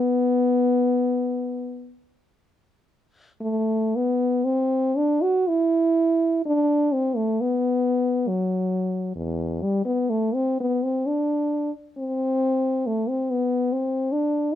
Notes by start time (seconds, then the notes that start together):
Already playing: B3
3.41 A3
3.96 B3
4.45 C4
4.97 D4
5.22 F#4
5.48 E4
6.46 D4
6.94 C4
7.16 A3
7.41 B3
8.28 F#3
9.16 E2
9.62 G3
9.85 B3
10.10 A3
10.34 C4
10.60 B3
10.83 C4
11.07 D4
11.98 C4
12.87 A3
13.09 C4
13.31 B3
13.73 C4
14.12 D4